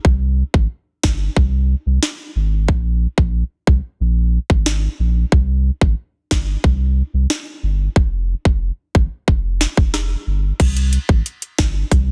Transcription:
0.05 0.43 C2 loud
0.05 kick loud
0.54 0.67 G#1 medium
0.54 kick medium
1.03 1.29 G1 medium
1.03 kick loud
1.03 snare loud
1.36 1.75 C2 loud
1.36 kick medium
1.86 1.99 C2 medium
2.03 snare loud
2.36 2.70 G#1 medium
2.68 3.07 A#1 loud
2.68 kick loud
3.18 3.43 A#1 medium
3.18 kick medium
3.67 3.80 C2 medium
3.67 kick medium
4.00 4.39 A#1 loud
4.50 4.88 G#1 medium
4.50 kick medium
4.66 snare loud
4.99 5.25 A#1 loud
5.32 5.70 C2 loud
5.32 kick loud
5.81 5.94 G#1 medium
5.81 kick medium
6.31 6.57 G1 medium
6.31 kick loud
6.31 snare loud
6.64 7.02 C2 loud
6.64 kick medium
7.14 7.26 C2 medium
7.30 snare loud
7.63 7.88 G1 medium
7.96 8.34 F1 loud
7.96 kick loud
8.45 8.71 F1 loud
8.45 kick medium
8.95 9.08 G1 medium
8.95 kick loud
9.28 9.66 F1 loud
9.28 kick medium
9.61 snare medium
9.77 10.16 F1 medium
9.77 kick medium
9.94 cross-stick loud
9.94 snare loud
10.27 10.52 G1 medium
10.60 10.98 C2 loud
10.60 kick loud
10.60 closed hi-hat medium
10.60 crash medium
10.77 closed hi-hat medium
10.93 closed hi-hat medium
11.09 11.22 G#1 loud
11.09 kick loud
11.26 closed hi-hat medium
11.42 closed hi-hat medium
11.58 11.84 G1 medium
11.58 kick loud
11.58 snare loud
11.58 closed hi-hat medium
11.91 12.12 C2 loud
11.91 kick medium
11.91 closed hi-hat medium

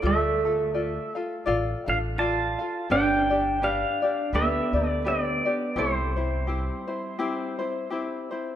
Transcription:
0.02 0.96 D2 medium
0.02 1.12 A3 medium
0.02 0.43 F4 medium
0.02 0.44 A4 medium
0.02 0.43 D5 medium
0.07 1.13 E5 medium
0.45 0.74 F4 soft
0.45 0.74 A4 soft
0.74 1.15 F4 medium
0.74 1.15 A4 medium
0.74 1.15 D5 medium
1.15 1.45 F4 soft
1.15 1.46 A4 medium
1.15 1.46 F5 medium
1.46 1.73 A1 medium
1.46 1.87 F4 medium
1.46 1.87 A4 medium
1.46 1.87 D5 medium
1.46 1.85 F5 medium
1.86 2.54 A1 medium
1.86 1.96 D4 medium
1.86 2.18 F4 soft
1.86 2.18 A4 soft
1.86 2.18 F5 soft
1.86 1.98 F5 medium
2.18 2.86 F4 medium
2.18 2.59 F4 medium
2.18 2.59 A4 medium
2.18 2.59 D5 medium
2.18 2.57 F5 medium
2.18 2.91 A5 medium
2.59 2.90 F4 soft
2.59 2.90 A4 soft
2.59 2.90 F5 medium
2.90 3.83 G1 medium
2.90 3.31 D4 medium
2.90 3.58 D4 medium
2.90 3.30 G4 medium
2.90 3.30 B4 medium
2.90 3.29 D5 medium
2.90 3.64 G5 loud
3.30 3.61 D4 soft
3.30 3.62 G4 soft
3.30 3.61 D5 medium
3.62 4.02 D4 medium
3.62 4.30 D4 medium
3.62 4.02 G4 medium
3.62 4.02 B4 soft
3.62 4.01 D5 medium
3.62 4.35 F5 medium
4.02 4.33 D4 soft
4.02 4.33 G4 soft
4.02 4.33 D5 medium
4.33 4.59 D2 medium
4.33 4.85 B3 medium
4.33 4.74 D4 medium
4.33 4.74 G4 medium
4.33 4.74 B4 medium
4.33 4.72 D5 medium
4.33 4.90 E5 medium
4.73 5.40 D2 medium
4.73 5.04 D4 soft
4.73 5.04 G4 soft
4.73 5.05 D5 medium
4.85 5.01 A3 medium
4.90 5.08 D5 medium
5.04 5.73 B3 medium
5.04 5.45 D4 medium
5.04 5.45 G4 medium
5.04 5.45 B4 medium
5.04 5.44 D5 medium
5.04 5.80 D5 medium
5.45 5.76 D4 soft
5.45 5.75 G4 soft
5.45 5.76 D5 medium
5.76 6.69 C2 medium
5.76 7.88 G3 medium
5.76 6.17 C4 medium
5.76 6.16 E4 medium
5.76 6.17 G4 medium
5.76 6.15 C5 medium
5.76 7.88 C5 medium
6.16 6.47 C4 soft
6.16 6.47 E4 soft
6.16 6.47 C5 soft
6.47 6.88 C4 medium
6.47 6.87 E4 medium
6.47 6.88 G4 medium
6.47 6.86 C5 medium
6.87 7.18 C4 soft
6.87 7.18 E4 soft
6.87 7.19 C5 medium
7.19 7.59 C4 medium
7.19 7.58 E4 medium
7.19 7.60 G4 medium
7.19 7.57 C5 medium
7.59 7.90 C4 soft
7.59 7.91 E4 soft
7.59 7.90 C5 medium
7.90 8.31 C4 medium
7.90 8.31 E4 medium
7.90 8.31 G4 medium
7.90 8.30 C5 medium
8.31 8.56 C4 soft
8.31 8.56 E4 medium
8.31 8.56 C5 medium

